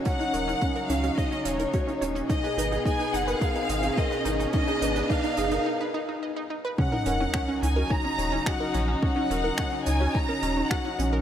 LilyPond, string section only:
\new Staff \with { instrumentName = "String section" } { \clef bass \time 4/4 \key ees \minor \tempo 4 = 107 << { <des dis'>1 | <ces aes'>1~ | <ces aes'>2 r2 | <des ees'>1~ |
<des ees'>1 | } \\ { ges1 | r1 | ces'2 r2 | ges1~ |
ges1 | } >> }